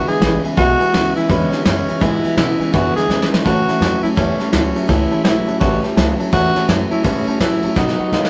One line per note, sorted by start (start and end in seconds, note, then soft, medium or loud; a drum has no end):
0.07 0.20 E2 medium
0.07 0.20 D3 medium
0.07 0.18 E3 soft
0.07 0.19 G#3 medium
0.07 0.20 B3 medium
0.07 0.20 E4 medium
0.07 0.41 G#4 loud
0.07 0.15 B4 medium
0.07 0.15 E5 medium
0.07 0.15 G#5 medium
0.07 muted upright bass stroke medium
0.07 ride medium
0.20 0.42 A1 loud
0.20 0.41 E2 medium
0.20 0.41 C#3 medium
0.20 0.42 E3 medium
0.20 0.42 G#3 medium
0.20 0.41 B3 medium
0.20 0.34 B4 medium
0.20 0.35 B5 medium
0.20 snare loud
0.20 ride medium
0.42 0.56 E2 medium
0.42 0.56 C#3 medium
0.42 0.55 E3 soft
0.42 0.56 G#3 soft
0.42 0.56 B3 medium
0.42 0.56 E4 soft
0.42 0.51 B4 medium
0.42 0.51 E5 medium
0.42 0.52 G#5 medium
0.42 ride medium
0.56 0.79 B1 medium
0.56 0.79 E2 medium
0.56 0.77 E2 medium
0.56 0.79 B2 medium
0.56 0.78 B2 loud
0.56 0.79 E3 medium
0.56 0.79 G#3 medium
0.56 0.78 B3 medium
0.56 0.77 E4 loud
0.56 1.12 F#4 loud
0.56 0.70 B4 loud
0.56 0.70 E5 medium
0.56 0.70 G#5 loud
0.56 kick loud
0.56 snare soft
0.56 ride medium
0.78 0.92 E2 medium
0.78 0.92 B2 medium
0.78 0.91 E3 soft
0.78 0.92 G#3 medium
0.78 0.93 B3 medium
0.78 0.92 E4 medium
0.78 0.87 B4 medium
0.78 0.87 E5 medium
0.78 0.87 G#5 medium
0.78 ride medium
0.92 1.14 D2 medium
0.92 1.13 E2 medium
0.92 1.14 C#3 medium
0.92 1.15 E3 medium
0.92 1.16 G#3 medium
0.92 1.15 B3 medium
0.92 1.14 E4 medium
0.92 1.06 B4 medium
0.92 1.07 E5 medium
0.92 1.07 G#5 medium
0.92 snare loud
0.92 ride medium
1.15 1.28 E2 medium
1.15 1.28 C#3 medium
1.15 1.28 E3 soft
1.15 1.28 G#3 medium
1.15 1.29 B3 soft
1.15 1.29 E4 medium
1.15 1.31 E4 medium
1.15 1.24 B4 medium
1.15 1.24 E5 medium
1.15 1.24 G#5 medium
1.15 ride medium
1.29 1.51 E2 medium
1.29 1.49 E2 medium
1.29 1.51 B2 medium
1.29 1.50 D3 loud
1.29 1.52 E3 medium
1.29 1.52 G#3 medium
1.29 1.51 B3 medium
1.29 1.64 C#4 medium
1.29 1.50 E4 medium
1.29 1.43 B4 loud
1.29 1.43 E5 medium
1.29 1.43 B5 loud
1.29 kick loud
1.29 snare soft
1.29 ride medium
1.51 1.64 E2 medium
1.51 1.64 D3 medium
1.51 1.63 E3 soft
1.51 1.64 G#3 medium
1.51 1.65 B3 medium
1.51 1.65 E4 medium
1.51 1.60 B4 medium
1.51 1.60 E5 medium
1.51 1.60 G#5 medium
1.51 muted upright bass stroke medium
1.51 snare soft
1.51 ride medium
1.65 1.85 E2 medium
1.65 1.87 F#2 medium
1.65 1.86 C#3 loud
1.65 1.87 E3 medium
1.65 1.88 G#3 medium
1.65 1.87 B3 medium
1.65 2.03 C#4 medium
1.65 1.87 E4 medium
1.65 1.79 B4 medium
1.65 1.79 E5 medium
1.65 1.79 G#5 medium
1.65 snare loud
1.65 ride medium
1.87 2.00 E2 medium
1.87 2.00 C#3 medium
1.87 1.99 E3 soft
1.87 1.99 G#3 soft
1.87 2.00 B3 soft
1.87 2.00 E4 medium
1.87 1.95 B4 medium
1.87 1.96 E5 medium
1.87 1.96 G#5 medium
1.87 muted upright bass stroke medium
1.87 ride medium
2.00 2.23 E2 medium
2.00 2.21 E2 medium
2.00 2.23 G#2 medium
2.00 2.23 B2 medium
2.00 2.22 B2 medium
2.00 2.23 E3 medium
2.00 2.23 G#3 medium
2.00 2.23 B3 medium
2.00 2.22 E4 medium
2.00 2.36 E4 loud
2.00 2.14 B4 loud
2.00 2.15 E5 medium
2.00 2.15 G#5 loud
2.00 kick loud
2.00 snare soft
2.00 ride medium
2.23 2.36 E2 medium
2.23 2.36 B2 medium
2.23 2.36 E3 soft
2.23 2.37 G#3 soft
2.23 2.37 B3 medium
2.23 2.37 E4 medium
2.23 2.31 B4 medium
2.23 2.32 E5 medium
2.23 2.32 G#5 medium
2.23 muted upright bass stroke medium
2.23 ride medium
2.37 2.57 E2 medium
2.37 2.58 B2 medium
2.37 2.58 C#3 medium
2.37 2.59 E3 medium
2.37 2.59 G#3 medium
2.37 2.58 B3 medium
2.37 2.75 E4 medium
2.37 2.58 E4 medium
2.37 2.51 B4 medium
2.37 2.51 G#5 medium
2.37 snare loud
2.37 ride medium
2.59 2.72 E2 medium
2.59 2.72 C#3 medium
2.59 2.72 E3 soft
2.59 2.72 G#3 soft
2.59 2.73 B3 medium
2.59 2.73 E4 soft
2.59 2.67 B4 medium
2.59 2.67 E5 medium
2.59 2.68 G#5 medium
2.59 muted upright bass stroke medium
2.59 ride medium
2.73 2.95 E2 medium
2.73 2.93 E2 medium
2.73 2.94 F#2 medium
2.73 2.95 B2 medium
2.73 2.94 D3 medium
2.73 2.95 E3 medium
2.73 2.94 G#3 medium
2.73 2.94 B3 medium
2.73 2.93 E4 loud
2.73 2.95 F#4 loud
2.73 2.86 B4 medium
2.73 2.87 E5 medium
2.73 2.87 G#5 loud
2.73 kick loud
2.73 ride medium
2.94 3.08 E2 medium
2.94 3.08 D3 medium
2.94 3.07 E3 soft
2.94 3.08 G#3 soft
2.94 3.08 B3 medium
2.94 3.08 E4 medium
2.94 3.29 G#4 loud
2.94 3.03 B4 medium
2.94 3.04 E5 medium
2.94 3.04 G#5 medium
2.94 muted upright bass stroke medium
2.94 snare soft
2.94 ride medium
3.08 3.29 E2 medium
3.08 3.30 E2 medium
3.08 3.30 C#3 medium
3.08 3.31 E3 medium
3.08 3.31 G#3 medium
3.08 3.30 B3 medium
3.08 3.30 E4 medium
3.08 3.22 B4 medium
3.08 3.22 E5 medium
3.08 3.23 G#5 medium
3.08 snare medium
3.22 snare medium
3.31 3.44 E2 medium
3.31 3.44 C#3 medium
3.31 3.43 E3 soft
3.31 3.44 G#3 soft
3.31 3.45 B3 soft
3.31 3.44 E4 medium
3.31 3.39 B4 medium
3.31 3.40 E5 medium
3.31 3.40 G#5 medium
3.31 muted upright bass stroke soft
3.31 snare loud
3.45 3.67 A2 medium
3.45 3.65 A2 medium
3.45 3.66 A2 medium
3.45 3.67 E3 medium
3.45 3.66 E3 medium
3.45 3.67 A3 medium
3.45 3.66 C#4 medium
3.45 3.65 E4 medium
3.45 3.99 F#4 loud
3.45 3.58 C#5 medium
3.45 3.59 E5 medium
3.45 3.59 A5 loud
3.45 kick loud
3.45 ride medium
3.66 3.80 A2 medium
3.66 3.80 E3 medium
3.66 3.80 A3 soft
3.66 3.80 C#4 medium
3.66 3.80 E4 medium
3.66 3.75 C#5 medium
3.66 3.76 E5 medium
3.66 3.76 A5 medium
3.66 muted upright bass stroke medium
3.66 snare soft
3.66 ride medium
3.80 4.02 F2 medium
3.80 4.01 A2 medium
3.80 4.03 E3 medium
3.80 4.02 F#3 medium
3.80 4.03 A3 medium
3.80 4.03 C#4 medium
3.80 4.02 E4 medium
3.80 3.94 C#5 medium
3.80 3.94 A5 medium
3.80 snare loud
3.80 ride medium
4.03 4.16 A2 medium
4.03 4.16 F#3 medium
4.03 4.15 A3 soft
4.03 4.15 C#4 medium
4.03 4.09 E4 medium
4.03 4.16 E4 medium
4.03 4.11 C#5 medium
4.03 4.11 E5 medium
4.03 4.12 A5 medium
4.03 muted upright bass stroke medium
4.03 ride medium
4.15 4.38 E2 medium
4.15 4.39 A2 medium
4.15 4.37 A2 medium
4.15 4.39 E3 medium
4.15 4.37 G3 medium
4.15 4.39 A3 medium
4.15 4.50 C#4 medium
4.15 4.38 C#4 medium
4.15 4.37 E4 medium
4.15 4.30 C#5 loud
4.15 4.30 E5 medium
4.15 4.30 A5 loud
4.15 kick loud
4.15 ride medium
4.38 4.51 A2 medium
4.38 4.52 G3 medium
4.38 4.52 A3 soft
4.38 4.53 C#4 medium
4.38 4.52 E4 medium
4.38 4.47 C#5 medium
4.38 4.48 E5 medium
4.38 4.48 A5 medium
4.38 snare soft
4.38 ride medium
4.52 4.75 D2 loud
4.52 4.73 A2 medium
4.52 4.75 E3 medium
4.52 4.73 F#3 medium
4.52 4.75 A3 medium
4.52 4.90 C#4 medium
4.52 4.74 C#4 medium
4.52 4.73 E4 medium
4.52 4.66 C#5 medium
4.52 4.67 E5 medium
4.52 4.67 A5 medium
4.52 snare loud
4.52 ride medium
4.74 4.88 A2 medium
4.74 4.88 F#3 medium
4.74 4.87 A3 soft
4.74 4.88 C#4 soft
4.74 4.88 E4 soft
4.74 4.83 C#5 medium
4.74 4.83 E5 medium
4.74 4.84 A5 medium
4.74 muted upright bass stroke medium
4.74 ride medium
4.87 5.11 C#2 medium
4.87 5.10 A2 medium
4.87 5.09 A2 medium
4.87 5.11 E3 medium
4.87 5.09 E3 medium
4.87 5.11 A3 medium
4.87 5.10 C#4 medium
4.87 5.23 E4 loud
4.87 5.09 E4 medium
4.87 5.02 C#5 loud
4.87 5.02 E5 medium
4.87 5.02 A5 loud
4.87 kick loud
4.87 ride medium
5.10 5.23 A2 medium
5.10 5.24 E3 medium
5.10 5.24 A3 soft
5.10 5.24 C#4 medium
5.10 5.24 E4 medium
5.10 5.19 C#5 medium
5.10 5.19 E5 medium
5.10 5.19 A5 medium
5.10 ride medium
5.23 5.46 B1 medium
5.23 5.45 A2 medium
5.23 5.47 E3 medium
5.23 5.45 F#3 medium
5.23 5.47 A3 medium
5.23 5.46 C#4 medium
5.23 5.58 E4 medium
5.23 5.45 E4 medium
5.23 5.38 C#5 medium
5.23 5.38 E5 medium
5.23 5.38 F#5 medium
5.23 snare loud
5.23 ride medium
5.46 5.59 A2 medium
5.46 5.60 F#3 medium
5.46 5.59 A3 soft
5.46 5.60 C#4 soft
5.46 5.60 E4 medium
5.46 5.55 C#5 medium
5.46 5.55 E5 medium
5.46 5.55 A5 medium
5.46 muted upright bass stroke soft
5.46 ride medium
5.60 5.83 A1 medium
5.60 5.83 A2 medium
5.60 5.81 A2 medium
5.60 5.83 E3 medium
5.60 5.81 G3 medium
5.60 5.83 A3 medium
5.60 5.83 C#4 medium
5.60 5.81 E4 medium
5.60 5.81 F#4 medium
5.60 5.74 C#5 loud
5.60 5.74 E5 medium
5.60 5.74 A5 loud
5.60 kick loud
5.60 ride medium
5.82 5.95 A2 medium
5.82 5.96 G3 medium
5.82 5.96 A3 soft
5.82 5.96 C#4 medium
5.82 5.96 E4 medium
5.82 5.91 C#5 medium
5.82 5.91 E5 medium
5.82 5.91 A5 medium
5.82 snare soft
5.82 ride medium
5.96 6.18 C#2 loud
5.96 6.17 A2 medium
5.96 6.19 E3 medium
5.96 6.17 F#3 medium
5.96 6.19 A3 medium
5.96 6.19 C#4 medium
5.96 6.17 E4 medium
5.96 6.10 C#5 medium
5.96 6.10 E5 medium
5.96 6.10 A5 loud
5.96 snare loud
5.96 ride medium
6.19 6.31 A2 medium
6.19 6.32 F#3 medium
6.19 6.31 A3 medium
6.19 6.32 C#4 medium
6.19 6.32 E4 medium
6.19 6.27 C#5 medium
6.19 6.27 E5 medium
6.19 6.27 A5 loud
6.19 muted upright bass stroke medium
6.19 ride medium
6.32 6.55 E2 medium
6.32 6.55 A2 medium
6.32 6.53 A2 medium
6.32 6.55 E3 medium
6.32 6.53 E3 medium
6.32 6.55 A3 medium
6.32 6.54 C#4 medium
6.32 6.53 E4 medium
6.32 6.66 F#4 loud
6.32 6.46 C#5 loud
6.32 6.46 E5 medium
6.32 6.46 A5 loud
6.32 kick loud
6.32 snare soft
6.32 ride medium
6.54 6.67 A2 medium
6.54 6.68 E3 medium
6.54 6.67 A3 soft
6.54 6.68 C#4 medium
6.54 6.68 E4 medium
6.54 6.63 C#5 medium
6.54 6.64 E5 medium
6.54 6.64 A5 medium
6.54 muted upright bass stroke medium
6.54 snare soft
6.54 ride medium
6.67 6.90 F#2 medium
6.67 6.89 A2 medium
6.67 6.91 E3 medium
6.67 6.89 F#3 loud
6.67 6.91 A3 medium
6.67 6.90 C#4 medium
6.67 6.89 E4 medium
6.67 6.82 C#5 medium
6.67 6.82 E5 medium
6.67 6.83 A5 medium
6.67 snare loud
6.67 ride medium
6.90 7.03 A2 medium
6.90 7.03 F#3 medium
6.90 7.03 A3 soft
6.90 7.03 C#4 medium
6.90 7.04 E4 soft
6.90 7.05 E4 medium
6.90 6.99 C#5 medium
6.90 6.99 E5 medium
6.90 6.99 A5 medium
6.90 muted upright bass stroke medium
6.90 ride medium
7.03 7.26 G#2 medium
7.03 7.26 A2 medium
7.03 7.25 A2 medium
7.03 7.26 E3 medium
7.03 7.25 G3 loud
7.03 7.27 A3 medium
7.03 7.40 C#4 loud
7.03 7.26 C#4 medium
7.03 7.24 E4 medium
7.03 7.18 C#5 loud
7.03 7.18 E5 medium
7.03 7.18 A5 loud
7.03 kick loud
7.03 ride loud
7.26 7.39 A2 medium
7.26 7.39 G3 medium
7.26 7.39 A3 medium
7.26 7.40 C#4 medium
7.26 7.40 E4 medium
7.26 7.35 C#5 medium
7.26 7.35 E5 medium
7.26 7.36 A5 medium
7.26 muted upright bass stroke medium
7.26 ride medium
7.39 7.62 A2 loud
7.39 7.61 A2 medium
7.39 7.62 E3 medium
7.39 7.61 F#3 medium
7.39 7.63 A3 medium
7.39 7.62 C#4 medium
7.39 7.78 E4 medium
7.39 7.61 E4 medium
7.39 7.54 C#5 medium
7.39 7.54 E5 medium
7.39 7.54 A5 medium
7.39 snare loud
7.39 ride medium
7.62 7.75 A2 medium
7.62 7.75 F#3 medium
7.62 7.75 A3 soft
7.62 7.76 C#4 soft
7.62 7.76 E4 medium
7.62 7.71 C#5 medium
7.62 7.71 E5 medium
7.62 7.71 A5 medium
7.62 muted upright bass stroke medium
7.62 ride medium
7.75 7.98 B2 medium
7.75 7.97 B2 medium
7.75 7.98 B2 medium
7.75 7.99 D#3 medium
7.75 7.97 F#3 medium
7.75 7.99 A3 medium
7.75 7.99 B3 medium
7.75 8.30 D#4 loud
7.75 7.97 F#4 medium
7.75 7.90 B4 loud
7.75 7.90 D#5 medium
7.75 7.90 F#5 loud
7.75 kick loud
7.75 snare medium
7.88 snare medium
7.98 8.11 B2 medium
7.98 8.11 F#3 medium
7.98 8.12 A3 soft
7.98 8.13 B3 medium
7.98 8.12 F#4 medium
7.98 8.06 B4 medium
7.98 8.07 D#5 medium
7.98 8.07 F#5 medium
7.98 muted upright bass stroke medium
8.12 8.30 B2 medium
8.12 8.30 C#3 medium
8.12 8.30 D#3 medium
8.12 8.30 G#3 loud
8.12 8.30 A3 medium
8.12 8.30 B3 medium
8.12 8.30 F#4 medium
8.12 8.26 B4 medium
8.12 8.26 D#5 medium
8.12 8.26 F#5 medium
8.12 snare medium
8.25 snare medium